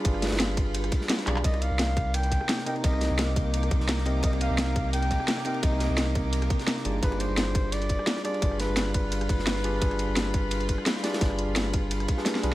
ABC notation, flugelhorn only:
X:1
M:4/4
L:1/8
Q:"Swing 16ths" 1/4=172
K:Cm
V:1 name="Flugelhorn"
z8 | e f3 g3 g | e3 z4 z | e f3 g3 g |
e3 z4 z | =B c3 d3 d- | d =B2 B4- B- | =B8- |
=B6 z2 |]